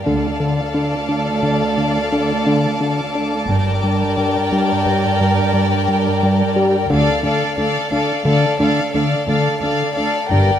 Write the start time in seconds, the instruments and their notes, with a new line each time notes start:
0.06 double bass section D2, cello section D2, analog synth bass D3, violin section A4 D5 F5 A5
0.40 analog synth bass D3
0.74 analog synth bass D3, violin section D6
1.09 analog synth bass D3
1.43 analog synth bass D3
1.78 analog synth bass D3
2.12 analog synth bass D3
2.47 analog synth bass D3
2.81 analog synth bass D3
3.15 analog synth bass D4
3.49 double bass section G1, cello section G2, analog synth bass G2, violin section A#4 D5 G5
3.83 analog synth bass G2
4.17 analog synth bass G2
4.52 analog synth bass G2
4.86 analog synth bass G2
5.21 analog synth bass G2
5.54 analog synth bass G2
5.88 analog synth bass G2
6.23 analog synth bass G2
6.56 analog synth bass G3
6.90 cello section D2, double bass section D2, analog synth bass D3, violin section A4 D5 F5
7.23 cello section D2, analog synth bass D3, violin section A4 D5 F5
7.57 cello section D2, analog synth bass D3, violin section A4 D5 F5
7.91 cello section D2, analog synth bass D3, violin section A4 D5 F5
8.25 cello section D2, analog synth bass D3, violin section A4 D5 F5
8.59 cello section D2, analog synth bass D3, violin section A4 D5 F5
8.92 cello section D2, analog synth bass D3, violin section A4 D5 F5
9.27 cello section D2, analog synth bass D3, violin section A4 D5 F5
9.60 cello section D2, analog synth bass D3, violin section A4 D5 F5
9.95 cello section D2, analog synth bass D4, violin section A4 D5 F5
10.28 double bass section G1, cello section G2, analog synth bass G2, violin section A#4 D5 G5